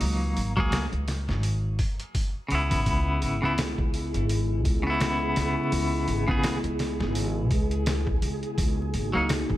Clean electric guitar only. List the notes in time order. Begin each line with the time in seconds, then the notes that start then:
Already playing: F#3 A#3 D#4
0.57 F#3 A#3 G#4
2.48 C#3 B3
2.55 E4
3.42 C#3 B3 E4
4.83 C#3 B3
4.90 E4
6.28 C#3 B3 G#4
9.13 F#3 A#3 D#4